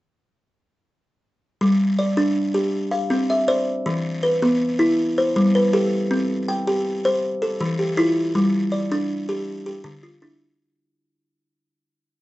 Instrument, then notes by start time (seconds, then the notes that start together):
kalimba
1.61 G3
1.99 D5
2.17 D4
2.54 G4
2.91 F5
3.10 C4
3.30 E5
3.48 C5 D5
3.86 E3
4.23 B4
4.42 B3
4.79 E4
5.18 C5
5.36 G3
5.55 B4
5.73 G4 A4
6.11 C4
6.48 G5
6.67 G4
7.05 C5
7.42 A4
7.61 E3
7.79 G4
7.97 E4 F4
8.35 G3
8.72 D5
8.92 D4
9.29 G4
9.66 G4
9.84 D3
10.03 F4
10.22 D4 E4